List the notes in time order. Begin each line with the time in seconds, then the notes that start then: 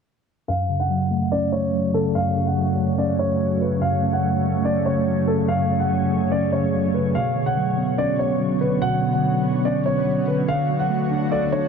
0.48 F#2 C#3 A3 F#4 C#5 F5
0.69 C#3
0.80 F#5
0.90 F#3
1.11 A3
1.32 C#4 D5
1.52 A3 C#5
1.73 F#3
1.94 C#3 A4
2.15 F#2 F5
2.36 C#3
2.46 F#5
2.57 F#3
2.77 A3
2.98 C#4 D5
3.19 A3 C#5
3.40 F#3
3.61 C#3 B4
3.81 F#2 G#4 F5
4.02 C#3
4.13 F#5
4.23 F#3
4.44 A3
4.65 C#4 D5
4.86 A3 C#5
5.07 F#3
5.27 C#3 A4
5.48 F#2 F5
5.69 C#3
5.80 F#5
5.90 F#3
6.11 A3
6.32 C#4 D5
6.52 A3 C#5
6.73 F#3
6.94 C#3 B4
7.15 B2 D3 B3 F#4 F5
7.36 D3
7.46 F#5
7.57 F#3
7.77 B3
7.98 C#4 D5
8.19 B3 C#5
8.40 F#3
8.61 D3 B4
8.81 B2 F#5
9.02 D3
9.13 F#5
9.23 F#3
9.44 B3
9.65 C#4 D5
9.86 B3 C#5
10.07 F#3
10.27 D3 B4
10.48 D3 A3 A4 F5
10.69 F#3
10.80 F#5
10.90 A3
11.11 D4
11.31 A4 D5
11.52 D4 C#5